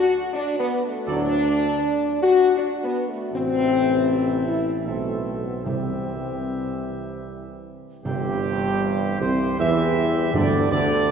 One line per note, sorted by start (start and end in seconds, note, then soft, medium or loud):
0.00 0.29 F#4 loud
0.33 0.56 D4 loud
0.58 0.82 B3 loud
0.85 1.10 A3 medium
1.07 1.70 D2 loud
1.07 1.36 A2 medium
1.07 1.36 F#3 medium
1.07 2.17 D4 loud
1.07 1.35 A4 medium
1.07 1.35 D5 medium
2.22 2.56 F#4 loud
2.57 2.68 D4 loud
2.84 3.07 B3 loud
3.08 3.33 A3 medium
3.31 4.89 A1 medium
3.31 4.82 C3 medium
3.31 4.82 E3 medium
3.31 4.44 C4 loud
3.31 4.82 A4 medium
3.31 4.82 E5 medium
4.47 4.84 E4 loud
4.86 5.67 B1 medium
4.86 5.62 E3 medium
4.86 5.24 A3 medium
4.86 5.62 C4 medium
4.86 5.61 A4 medium
4.86 5.61 E5 medium
5.25 5.44 A3 medium
5.45 5.54 B3 medium
5.64 7.71 C2 medium
5.64 7.67 C3 medium
5.64 6.82 C3 medium
5.64 7.67 E3 medium
5.64 7.60 C4 medium
5.64 7.71 G4 medium
5.64 7.67 E5 medium
8.03 9.17 G1 medium
8.03 9.16 G2 medium
8.03 9.17 C3 medium
8.03 10.30 E3 medium
8.03 9.16 G3 medium
8.03 11.11 G3 medium
8.03 10.30 C4 medium
8.03 9.17 G4 loud
8.03 11.11 G4 medium
9.20 9.56 C2 medium
9.20 9.59 C3 medium
9.20 9.56 C4 medium
9.20 9.59 C5 medium
9.58 10.30 E2 loud
9.58 10.31 E3 medium
9.58 10.30 E4 medium
9.58 10.30 E5 loud
10.34 10.68 D2 medium
10.34 11.11 G2 loud
10.34 10.69 D3 medium
10.34 11.11 D3 medium
10.34 11.11 B3 medium
10.34 10.69 D4 medium
10.34 10.70 D5 loud
10.70 11.11 D2 medium
10.70 11.11 D3 loud
10.70 11.11 D4 medium
10.70 11.11 D5 loud